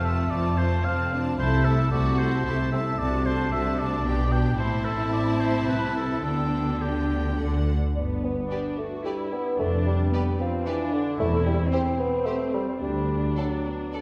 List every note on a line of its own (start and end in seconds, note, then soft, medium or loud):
0.00 0.25 F1 soft
0.00 0.25 F2 soft
0.00 0.85 A3 soft
0.00 0.30 C4 soft
0.00 0.29 F4 soft
0.00 0.30 A5 soft
0.05 0.32 E5 medium
0.31 0.79 F1 soft
0.31 0.79 F2 soft
0.31 0.57 C4 soft
0.31 0.56 F4 soft
0.31 0.59 D5 medium
0.31 0.56 A5 soft
0.57 0.84 C4 soft
0.57 0.84 F4 soft
0.57 0.86 C5 medium
0.57 0.83 A5 soft
0.84 1.33 F1 soft
0.84 1.33 F2 soft
0.84 1.11 C4 soft
0.84 1.12 C4 soft
0.84 1.11 F4 soft
0.84 1.20 F5 medium
0.84 1.10 A5 soft
1.11 1.38 C4 soft
1.11 1.39 D4 soft
1.11 1.38 F4 soft
1.11 1.37 A5 soft
1.38 1.86 C2 medium
1.38 1.86 C3 medium
1.38 1.65 A3 soft
1.38 1.65 E4 soft
1.38 1.91 E4 soft
1.38 1.66 C5 medium
1.38 1.64 A5 soft
1.65 1.91 A3 soft
1.65 1.91 E4 soft
1.65 1.90 A4 medium
1.65 1.91 A5 soft
1.91 2.40 C2 medium
1.91 2.40 C3 medium
1.91 2.19 A3 soft
1.91 2.18 E4 soft
1.91 2.45 F#4 medium
1.91 2.20 D5 medium
1.91 2.18 A5 soft
2.18 2.45 A3 soft
2.18 2.45 E4 soft
2.18 2.71 C5 medium
2.18 2.45 A5 soft
2.46 2.93 C2 medium
2.46 2.93 C3 soft
2.46 2.72 A3 soft
2.46 2.54 E4 soft
2.46 2.72 E4 soft
2.46 2.71 A5 soft
2.72 2.99 A3 soft
2.72 2.81 C4 soft
2.72 2.99 E4 soft
2.72 3.00 E5 medium
2.72 2.99 A5 soft
2.99 3.47 C2 soft
2.99 3.47 C3 medium
2.99 3.25 A3 soft
2.99 4.56 D4 medium
2.99 3.25 F#4 soft
2.99 3.27 D5 medium
2.99 3.25 A5 soft
3.26 3.52 A3 soft
3.26 3.51 F#4 soft
3.26 3.52 C5 medium
3.26 3.52 A5 soft
3.52 4.00 C2 soft
3.52 4.00 C3 medium
3.52 3.78 A3 soft
3.52 3.78 F#4 soft
3.52 3.81 E5 medium
3.52 3.79 A5 soft
3.79 4.05 A3 soft
3.79 4.05 F#4 soft
3.79 4.34 D5 medium
3.79 4.06 A5 soft
4.06 4.53 B1 medium
4.06 4.53 B2 soft
4.06 4.31 B3 soft
4.06 4.31 G4 soft
4.06 4.31 G5 soft
4.32 4.59 B3 soft
4.32 4.59 G4 soft
4.32 4.58 G5 medium
4.32 4.58 G5 soft
4.59 5.64 A1 soft
4.59 5.64 A2 soft
4.59 6.21 C4 medium
4.59 6.21 E4 medium
4.59 6.22 E4 medium
4.59 4.87 C5 medium
4.59 6.21 A5 soft
4.85 5.12 A4 medium
5.13 5.41 D5 medium
5.40 5.67 C5 medium
5.68 6.25 C2 soft
5.68 6.25 C3 soft
5.68 5.96 B4 medium
5.96 6.24 A4 soft
6.25 7.37 D2 soft
6.25 7.37 D3 soft
6.25 6.81 B3 soft
6.25 6.81 D4 soft
6.25 7.66 D4 soft
6.25 6.83 A4 medium
6.25 6.81 G5 soft
6.82 7.39 B3 soft
6.82 7.39 D4 soft
6.82 7.39 G4 soft
6.82 7.38 G5 soft
7.40 7.75 D2 soft
7.40 7.75 D3 soft
7.40 7.76 A3 soft
7.40 7.75 D4 soft
7.40 7.76 F#5 soft
7.96 8.42 G1 soft
7.96 8.42 G2 soft
7.96 8.47 B3 soft
7.96 11.15 D4 soft
7.96 8.25 D4 medium
7.96 11.15 B4 soft
8.24 8.77 B3 medium
8.51 8.78 D4 soft
8.51 8.59 G4 soft
8.51 8.59 B4 soft
8.51 8.59 D5 soft
8.78 9.05 A3 soft
8.78 9.05 F#4 soft
9.05 9.32 G3 medium
9.05 9.60 E4 soft
9.05 9.13 G4 soft
9.05 9.13 B4 soft
9.05 9.14 D5 soft
9.33 9.59 B3 medium
9.59 10.04 F1 soft
9.59 10.04 F2 soft
9.59 9.72 A3 medium
9.59 10.12 D4 medium
9.86 10.38 G3 medium
10.13 10.39 B3 soft
10.13 10.21 G4 soft
10.13 10.21 B4 soft
10.13 10.21 D5 soft
10.40 10.66 F3 medium
10.40 10.65 C4 soft
10.65 10.95 E3 medium
10.65 11.19 D4 medium
10.65 10.74 G4 soft
10.65 10.74 B4 soft
10.65 10.74 D5 soft
10.93 11.19 D3 medium
11.19 11.64 E1 medium
11.19 11.63 E2 medium
11.19 11.32 A3 medium
11.19 12.79 C4 medium
11.19 11.71 E4 medium
11.19 12.82 C5 medium
11.46 11.58 G3 medium
11.72 12.82 C4 medium
11.72 11.98 C4 medium
11.72 11.80 G4 soft
11.72 11.80 C5 soft
11.99 12.28 B3 medium
12.26 12.53 A3 medium
12.26 12.35 G4 soft
12.26 12.34 C5 soft
12.26 12.35 C5 soft
12.54 12.66 G3 medium
12.82 13.28 D2 soft
12.82 13.40 G3 medium
12.82 14.01 D4 soft
12.82 13.32 D4 soft
12.82 13.31 A4 soft
13.37 13.93 F#3 soft
13.37 13.51 D4 soft
13.37 13.46 A4 soft
13.37 13.45 D5 soft
13.65 14.01 B3 soft
13.93 14.01 A4 soft
13.93 14.01 D5 soft